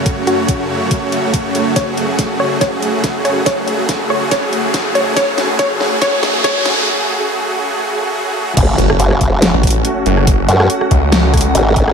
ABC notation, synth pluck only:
X:1
M:4/4
L:1/8
Q:"Swing 16ths" 1/4=141
K:F#m
V:1 name="Synth pluck"
A F6- F | c3 c c3 c | c3 c c3 c | c2 c2 c2 c2 |
z8 | z8 | z8 |]